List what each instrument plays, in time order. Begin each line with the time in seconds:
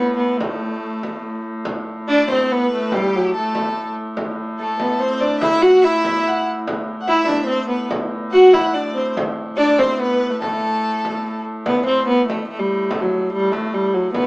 Already playing: hurdy-gurdy A2, viola da gamba B3
0.16 viola da gamba B3, frame drum
0.38 viola da gamba A3, frame drum
0.61 frame drum
0.82 frame drum
1.03 frame drum
1.65 hurdy-gurdy A2, frame drum
2.08 viola da gamba D4, violin D5, frame drum
2.28 viola da gamba C4, violin C5, frame drum
2.44 violin C5
2.52 viola da gamba B3, violin B4
2.70 viola da gamba A3, frame drum
2.92 viola da gamba G3, violin G4, frame drum
3.16 viola da gamba F#3
3.34 viola da gamba A3, violin A4, frame drum
3.55 frame drum
3.96 frame drum
4.17 frame drum
4.59 viola da gamba A3, violin A4, frame drum
4.80 viola da gamba B3, frame drum
5.00 viola da gamba C4, violin C5
5.21 viola da gamba D4, violin D5, frame drum
5.40 viola da gamba E4, violin E5, frame drum
5.62 viola da gamba F#4, violin F#5
5.82 viola da gamba E4, violin E5
6.05 frame drum
6.26 violin F#5, frame drum
6.47 frame drum
6.67 hurdy-gurdy A2, frame drum
7.01 violin F#5
7.08 viola da gamba E4, violin E5, frame drum
7.25 viola da gamba D4 E4
7.29 frame drum
7.47 viola da gamba C4, violin C5
7.68 viola da gamba B3, violin B4, frame drum
7.91 frame drum
8.32 viola da gamba F#4, violin F#5, frame drum
8.53 viola da gamba E4, frame drum
8.74 viola da gamba D4, violin D5
8.95 viola da gamba C4, violin C5, frame drum
9.17 frame drum
9.57 viola da gamba D4, violin D5, frame drum
9.78 viola da gamba C4, violin C5, frame drum
10.00 viola da gamba B3, violin B4
10.21 frame drum
10.30 viola da gamba A3
10.41 viola da gamba A3, violin A4, frame drum
10.63 frame drum
11.05 frame drum
11.26 frame drum
11.46 frame drum
11.66 hurdy-gurdy A2, viola da gamba B3, frame drum
11.86 viola da gamba C4, frame drum
12.08 viola da gamba B3
12.28 viola da gamba A3, frame drum
12.48 viola da gamba A3
12.59 viola da gamba G3
12.91 viola da gamba A3, frame drum
13.02 viola da gamba F#3
13.12 frame drum
13.33 viola da gamba G3
13.52 viola da gamba A3, frame drum
13.74 viola da gamba G3
13.94 viola da gamba F#3
14.13 viola da gamba B3, frame drum